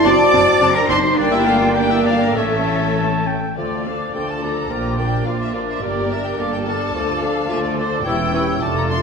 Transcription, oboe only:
0, 0, Header, 1, 2, 480
1, 0, Start_track
1, 0, Key_signature, -1, "minor"
1, 0, Tempo, 566038
1, 50, Time_signature, 2, 2, 24, 8
1, 1492, Tempo, 605449
1, 2932, Tempo, 570885
1, 3412, Tempo, 560224
1, 7589, End_track
2, 0, Start_track
2, 0, Title_t, "Oboe"
2, 0, Program_c, 0, 68
2, 46, Note_on_c, 0, 86, 92
2, 636, Note_on_c, 0, 82, 78
2, 649, Note_off_c, 0, 86, 0
2, 758, Note_off_c, 0, 82, 0
2, 765, Note_on_c, 0, 84, 102
2, 998, Note_on_c, 0, 74, 86
2, 1011, Note_off_c, 0, 84, 0
2, 1109, Note_off_c, 0, 74, 0
2, 1114, Note_on_c, 0, 76, 74
2, 1171, Note_off_c, 0, 76, 0
2, 1244, Note_on_c, 0, 77, 66
2, 1356, Note_off_c, 0, 77, 0
2, 1489, Note_on_c, 0, 79, 65
2, 1607, Note_on_c, 0, 76, 67
2, 1619, Note_off_c, 0, 79, 0
2, 1732, Note_on_c, 0, 74, 59
2, 1744, Note_off_c, 0, 76, 0
2, 1851, Note_on_c, 0, 70, 65
2, 1863, Note_off_c, 0, 74, 0
2, 1967, Note_off_c, 0, 70, 0
2, 1972, Note_on_c, 0, 73, 59
2, 2683, Note_off_c, 0, 73, 0
2, 2936, Note_on_c, 0, 74, 35
2, 3170, Note_off_c, 0, 74, 0
2, 3181, Note_on_c, 0, 74, 31
2, 3412, Note_off_c, 0, 74, 0
2, 3416, Note_on_c, 0, 74, 34
2, 3649, Note_off_c, 0, 74, 0
2, 3657, Note_on_c, 0, 74, 36
2, 3889, Note_off_c, 0, 74, 0
2, 3894, Note_on_c, 0, 74, 33
2, 4128, Note_off_c, 0, 74, 0
2, 4132, Note_on_c, 0, 74, 33
2, 4368, Note_off_c, 0, 74, 0
2, 4372, Note_on_c, 0, 74, 37
2, 4607, Note_off_c, 0, 74, 0
2, 4616, Note_on_c, 0, 74, 42
2, 4847, Note_off_c, 0, 74, 0
2, 4852, Note_on_c, 0, 74, 39
2, 5088, Note_off_c, 0, 74, 0
2, 5093, Note_on_c, 0, 74, 34
2, 5331, Note_off_c, 0, 74, 0
2, 5339, Note_on_c, 0, 74, 43
2, 5573, Note_off_c, 0, 74, 0
2, 5581, Note_on_c, 0, 74, 48
2, 5809, Note_off_c, 0, 74, 0
2, 5814, Note_on_c, 0, 74, 42
2, 6040, Note_off_c, 0, 74, 0
2, 6045, Note_on_c, 0, 74, 40
2, 6279, Note_off_c, 0, 74, 0
2, 6282, Note_on_c, 0, 74, 49
2, 6513, Note_off_c, 0, 74, 0
2, 6518, Note_on_c, 0, 74, 53
2, 6754, Note_off_c, 0, 74, 0
2, 6759, Note_on_c, 0, 73, 52
2, 6996, Note_off_c, 0, 73, 0
2, 7001, Note_on_c, 0, 73, 44
2, 7238, Note_off_c, 0, 73, 0
2, 7243, Note_on_c, 0, 74, 55
2, 7482, Note_off_c, 0, 74, 0
2, 7491, Note_on_c, 0, 74, 54
2, 7589, Note_off_c, 0, 74, 0
2, 7589, End_track
0, 0, End_of_file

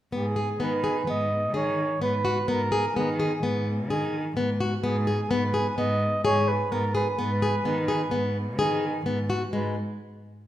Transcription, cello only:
0, 0, Header, 1, 2, 480
1, 0, Start_track
1, 0, Key_signature, 5, "minor"
1, 0, Tempo, 470219
1, 135, Time_signature, 5, 2, 24, 8
1, 10691, End_track
2, 0, Start_track
2, 0, Title_t, "Cello"
2, 0, Program_c, 0, 42
2, 131, Note_on_c, 0, 44, 74
2, 557, Note_off_c, 0, 44, 0
2, 613, Note_on_c, 0, 51, 61
2, 1039, Note_off_c, 0, 51, 0
2, 1097, Note_on_c, 0, 44, 72
2, 1583, Note_on_c, 0, 51, 67
2, 1598, Note_off_c, 0, 44, 0
2, 2005, Note_off_c, 0, 51, 0
2, 2064, Note_on_c, 0, 44, 65
2, 2485, Note_off_c, 0, 44, 0
2, 2544, Note_on_c, 0, 44, 71
2, 2965, Note_off_c, 0, 44, 0
2, 3021, Note_on_c, 0, 51, 71
2, 3444, Note_off_c, 0, 51, 0
2, 3502, Note_on_c, 0, 44, 76
2, 3988, Note_on_c, 0, 51, 71
2, 4003, Note_off_c, 0, 44, 0
2, 4407, Note_off_c, 0, 51, 0
2, 4458, Note_on_c, 0, 44, 65
2, 4881, Note_off_c, 0, 44, 0
2, 4936, Note_on_c, 0, 44, 84
2, 5360, Note_off_c, 0, 44, 0
2, 5413, Note_on_c, 0, 44, 74
2, 5837, Note_off_c, 0, 44, 0
2, 5893, Note_on_c, 0, 44, 76
2, 6317, Note_off_c, 0, 44, 0
2, 6369, Note_on_c, 0, 44, 73
2, 6794, Note_off_c, 0, 44, 0
2, 6853, Note_on_c, 0, 44, 69
2, 7276, Note_off_c, 0, 44, 0
2, 7337, Note_on_c, 0, 44, 75
2, 7758, Note_off_c, 0, 44, 0
2, 7816, Note_on_c, 0, 51, 71
2, 8237, Note_off_c, 0, 51, 0
2, 8294, Note_on_c, 0, 44, 75
2, 8771, Note_on_c, 0, 51, 69
2, 8786, Note_off_c, 0, 44, 0
2, 9193, Note_off_c, 0, 51, 0
2, 9248, Note_on_c, 0, 44, 72
2, 9672, Note_off_c, 0, 44, 0
2, 9729, Note_on_c, 0, 44, 68
2, 9953, Note_off_c, 0, 44, 0
2, 10691, End_track
0, 0, End_of_file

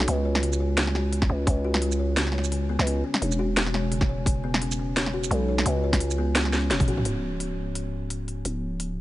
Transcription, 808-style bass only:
0, 0, Header, 1, 2, 480
1, 0, Start_track
1, 0, Key_signature, 4, "minor"
1, 0, Tempo, 348837
1, 110, Time_signature, 4, 2, 24, 8
1, 12396, End_track
2, 0, Start_track
2, 0, Title_t, "808-style bass"
2, 0, Program_c, 0, 38
2, 109, Note_on_c, 0, 37, 99
2, 1775, Note_off_c, 0, 37, 0
2, 1784, Note_on_c, 0, 37, 80
2, 2010, Note_off_c, 0, 37, 0
2, 2021, Note_on_c, 0, 37, 100
2, 3823, Note_off_c, 0, 37, 0
2, 3838, Note_on_c, 0, 37, 92
2, 4173, Note_off_c, 0, 37, 0
2, 4428, Note_on_c, 0, 28, 81
2, 7295, Note_off_c, 0, 28, 0
2, 7304, Note_on_c, 0, 35, 100
2, 7773, Note_off_c, 0, 35, 0
2, 7784, Note_on_c, 0, 37, 101
2, 9229, Note_on_c, 0, 28, 84
2, 9250, Note_off_c, 0, 37, 0
2, 9470, Note_on_c, 0, 35, 103
2, 9491, Note_off_c, 0, 28, 0
2, 9693, Note_off_c, 0, 35, 0
2, 9709, Note_on_c, 0, 25, 88
2, 11608, Note_off_c, 0, 25, 0
2, 11628, Note_on_c, 0, 25, 86
2, 12396, Note_off_c, 0, 25, 0
2, 12396, End_track
0, 0, End_of_file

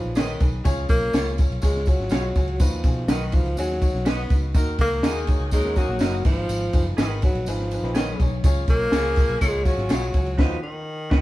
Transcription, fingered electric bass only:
0, 0, Header, 1, 2, 480
1, 0, Start_track
1, 0, Tempo, 486618
1, 642, Time_signature, 4, 2, 24, 8
1, 11061, End_track
2, 0, Start_track
2, 0, Title_t, "Fingered electric bass"
2, 0, Program_c, 0, 33
2, 41, Note_on_c, 0, 34, 80
2, 344, Note_off_c, 0, 34, 0
2, 401, Note_on_c, 0, 35, 94
2, 603, Note_off_c, 0, 35, 0
2, 638, Note_on_c, 0, 37, 99
2, 842, Note_off_c, 0, 37, 0
2, 877, Note_on_c, 0, 35, 91
2, 1081, Note_off_c, 0, 35, 0
2, 1120, Note_on_c, 0, 37, 98
2, 1424, Note_off_c, 0, 37, 0
2, 1481, Note_on_c, 0, 35, 87
2, 1583, Note_off_c, 0, 35, 0
2, 1608, Note_on_c, 0, 37, 107
2, 1909, Note_off_c, 0, 37, 0
2, 1952, Note_on_c, 0, 32, 89
2, 2058, Note_off_c, 0, 32, 0
2, 2071, Note_on_c, 0, 35, 93
2, 2278, Note_off_c, 0, 35, 0
2, 2324, Note_on_c, 0, 37, 89
2, 2526, Note_off_c, 0, 37, 0
2, 2561, Note_on_c, 0, 39, 101
2, 2764, Note_off_c, 0, 39, 0
2, 2796, Note_on_c, 0, 47, 93
2, 3002, Note_off_c, 0, 47, 0
2, 3031, Note_on_c, 0, 35, 100
2, 3339, Note_off_c, 0, 35, 0
2, 3396, Note_on_c, 0, 37, 86
2, 3501, Note_off_c, 0, 37, 0
2, 3518, Note_on_c, 0, 39, 100
2, 3823, Note_off_c, 0, 39, 0
2, 3880, Note_on_c, 0, 35, 87
2, 4185, Note_off_c, 0, 35, 0
2, 4246, Note_on_c, 0, 37, 90
2, 4448, Note_off_c, 0, 37, 0
2, 4484, Note_on_c, 0, 39, 108
2, 4687, Note_off_c, 0, 39, 0
2, 4718, Note_on_c, 0, 37, 87
2, 4923, Note_off_c, 0, 37, 0
2, 4958, Note_on_c, 0, 39, 100
2, 5263, Note_off_c, 0, 39, 0
2, 5317, Note_on_c, 0, 37, 85
2, 5422, Note_off_c, 0, 37, 0
2, 5446, Note_on_c, 0, 39, 96
2, 5748, Note_off_c, 0, 39, 0
2, 5798, Note_on_c, 0, 34, 84
2, 5902, Note_off_c, 0, 34, 0
2, 5918, Note_on_c, 0, 30, 97
2, 6123, Note_off_c, 0, 30, 0
2, 6164, Note_on_c, 0, 32, 100
2, 6366, Note_off_c, 0, 32, 0
2, 6402, Note_on_c, 0, 32, 102
2, 6605, Note_off_c, 0, 32, 0
2, 6640, Note_on_c, 0, 30, 97
2, 6843, Note_off_c, 0, 30, 0
2, 6878, Note_on_c, 0, 32, 95
2, 7183, Note_off_c, 0, 32, 0
2, 7237, Note_on_c, 0, 34, 95
2, 7341, Note_off_c, 0, 34, 0
2, 7359, Note_on_c, 0, 32, 102
2, 7663, Note_off_c, 0, 32, 0
2, 7715, Note_on_c, 0, 34, 80
2, 8020, Note_off_c, 0, 34, 0
2, 8085, Note_on_c, 0, 35, 102
2, 8285, Note_off_c, 0, 35, 0
2, 8325, Note_on_c, 0, 37, 94
2, 8525, Note_off_c, 0, 37, 0
2, 8559, Note_on_c, 0, 35, 99
2, 8762, Note_off_c, 0, 35, 0
2, 8796, Note_on_c, 0, 37, 97
2, 9100, Note_off_c, 0, 37, 0
2, 9157, Note_on_c, 0, 35, 91
2, 9260, Note_off_c, 0, 35, 0
2, 9280, Note_on_c, 0, 37, 103
2, 9582, Note_off_c, 0, 37, 0
2, 9641, Note_on_c, 0, 32, 90
2, 9742, Note_off_c, 0, 32, 0
2, 9763, Note_on_c, 0, 35, 87
2, 9963, Note_off_c, 0, 35, 0
2, 10003, Note_on_c, 0, 37, 95
2, 10203, Note_off_c, 0, 37, 0
2, 10238, Note_on_c, 0, 39, 101
2, 10402, Note_off_c, 0, 39, 0
2, 10958, Note_on_c, 0, 39, 102
2, 11061, Note_off_c, 0, 39, 0
2, 11061, End_track
0, 0, End_of_file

